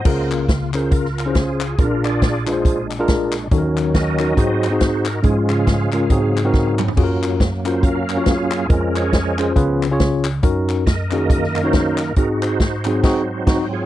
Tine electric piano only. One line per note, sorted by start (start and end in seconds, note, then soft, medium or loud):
0.00 0.29 C5 soft
0.00 0.29 F#5 medium
0.05 1.75 C#2 medium
0.05 1.75 C#3 medium
0.05 0.45 C#4 medium
0.05 0.45 F4 medium
0.05 0.46 G#4 medium
0.05 0.46 A#4 medium
0.74 1.05 C#4 medium
0.74 0.79 E4 soft
0.74 1.05 G#4 medium
0.74 1.06 A#4 medium
0.80 1.08 F4 medium
1.26 1.61 C#4 medium
1.26 1.31 E4 medium
1.26 1.61 G#4 medium
1.26 1.62 C5 medium
1.32 1.64 F4 medium
1.79 3.48 A#1 medium
1.79 3.48 A#2 medium
1.79 1.85 C4 medium
1.79 2.19 F4 medium
1.79 2.19 G#4 medium
1.79 2.19 A#4 medium
1.84 2.21 D4 medium
2.46 2.78 D4 medium
2.46 2.78 F4 medium
2.46 2.78 G#4 medium
2.46 2.51 B4 medium
2.52 2.81 C5 medium
2.99 3.34 D4 medium
2.99 3.34 F4 medium
2.99 3.34 G#4 medium
2.99 3.35 A#4 loud
3.51 4.34 D#2 medium
3.51 4.34 D#3 medium
3.51 3.91 C#4 medium
3.51 3.92 D#4 medium
3.51 3.92 F#4 medium
3.51 3.58 A4 medium
3.58 3.95 A#4 medium
4.20 4.38 C#4 medium
4.20 4.36 D#4 medium
4.20 4.36 F#4 medium
4.20 4.38 A#4 medium
4.36 5.20 G#2 medium
4.36 4.66 C4 medium
4.36 4.66 D#4 medium
4.36 4.66 F#4 medium
4.36 4.67 G#4 medium
4.71 5.06 C4 medium
4.71 5.06 D#4 medium
4.71 5.06 F#4 medium
4.71 5.07 G#4 medium
5.23 6.06 G#2 medium
5.23 5.64 G#3 medium
5.23 5.64 C#4 medium
5.23 5.30 D#4 soft
5.23 5.64 G#4 medium
5.29 5.67 F4 medium
5.93 6.11 G#3 medium
5.93 6.11 C#4 medium
5.93 6.11 F4 medium
5.93 6.11 A#4 medium
6.11 6.94 G#2 medium
6.11 6.40 C4 medium
6.11 6.40 D#4 medium
6.11 6.40 F#4 medium
6.11 6.40 G#4 medium
6.45 6.80 C4 medium
6.45 6.80 D#4 medium
6.45 6.80 F#4 medium
6.45 6.80 A#4 loud
6.96 8.66 F#2 medium
6.96 7.37 C#4 medium
6.96 7.37 F4 medium
6.96 7.38 F#4 medium
6.96 7.04 G#4 medium
7.04 7.41 A#4 medium
7.65 7.97 C#4 medium
7.65 7.97 F4 medium
7.65 7.97 F#4 medium
7.65 7.97 A#4 medium
8.17 8.52 C#4 medium
8.17 8.52 F4 medium
8.17 8.53 F#4 medium
8.17 8.53 C#5 medium
8.68 9.52 F2 medium
8.68 8.75 C4 medium
8.68 9.10 F4 medium
8.68 9.10 G#4 medium
8.68 9.10 A#4 medium
8.74 9.12 C#4 medium
9.39 9.55 C#4 medium
9.39 9.55 F4 medium
9.39 9.55 G#4 medium
9.39 9.57 C5 medium
9.56 10.39 C#2 medium
9.56 10.39 C#3 medium
9.56 9.85 C#4 medium
9.56 9.85 F4 medium
9.56 9.86 G#4 medium
9.56 9.86 B4 medium
9.91 10.26 C#4 medium
9.91 10.26 F4 medium
9.91 10.26 G#4 medium
9.91 10.27 C#5 loud
10.43 12.12 F#2 medium
10.43 10.83 C#4 medium
10.43 10.83 D#4 medium
10.43 10.83 F#4 medium
10.43 10.84 A#4 medium
11.12 11.43 C#4 medium
11.12 11.43 D#4 medium
11.12 11.44 F#4 medium
11.12 11.44 G#4 medium
11.64 11.99 C#4 medium
11.64 11.99 D#4 medium
11.64 11.99 F#4 medium
11.64 11.99 C#5 medium
12.17 13.00 G#2 medium
12.17 12.57 C4 medium
12.17 12.57 D#4 medium
12.17 12.58 F#4 medium
12.17 12.58 G#4 medium
12.86 13.02 C4 medium
12.86 13.03 D#4 medium
12.86 13.03 F#4 medium
12.86 13.04 G#4 medium
13.03 13.21 C4 loud
13.03 13.21 D#4 medium
13.03 13.21 F#4 loud
13.03 13.21 G#4 loud
13.47 13.64 C4 medium
13.47 13.64 D#4 loud
13.47 13.64 F#4 loud